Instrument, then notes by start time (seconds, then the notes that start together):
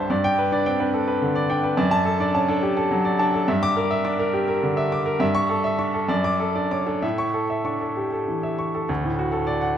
grand piano
Already playing: C2 G2 D4 B4 C5 E5 A5
0.10 G2 D5
0.24 G5
0.39 B4
0.52 D4 D5
0.66 C4 G5
0.80 D4 B4
0.94 A4
1.08 B4
1.22 D3
1.35 D5
1.50 D4 G5
1.64 B4
1.77 F#2 D5
1.91 A5
2.05 A4
2.20 D4 D5
2.35 C#4 A5
2.48 D4 A4
2.63 G4
2.77 A4
2.91 F#3
3.05 D5
3.19 D4 A5
3.34 A4
3.48 G2 E5
3.63 D6
3.77 A#4
3.91 E5
4.05 D4 D6
4.19 A#4
4.34 G4
4.48 A#4
4.63 D3
4.77 E5
4.92 D6
5.06 A#4
5.20 G2 E5
5.35 C#6
5.49 A4
5.64 E5
5.79 D4 C#6
5.94 A4
6.08 F#2 D5
6.24 D6
6.40 A4
6.55 D4 D5
6.71 C#4 D6
6.86 D4 A4
7.02 A2 E5
7.18 C#6
7.34 A4
7.50 E5
7.65 D4 C#6
7.81 A4
7.97 G4
8.12 A4
8.28 E3
8.43 E5
8.59 C#6
8.75 A4
8.89 D2
9.04 A2
9.19 F#4
9.32 A4
9.47 D5
9.61 F#5